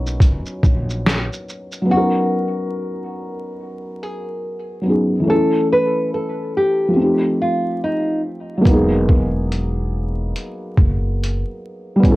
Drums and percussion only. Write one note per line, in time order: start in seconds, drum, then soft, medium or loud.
0.07 shaker soft
0.20 kick medium
0.20 closed hi-hat medium
0.20 shaker medium
0.46 shaker soft
0.63 kick medium
0.63 shaker soft
0.90 shaker soft
1.06 snare loud
1.06 closed hi-hat medium
1.06 shaker medium
1.33 shaker soft
1.49 shaker soft
1.72 shaker medium
8.65 kick medium
8.65 closed hi-hat medium
9.09 kick medium
9.52 closed hi-hat soft
10.36 closed hi-hat medium
10.77 kick medium
11.24 closed hi-hat medium
12.03 kick loud
12.03 closed hi-hat medium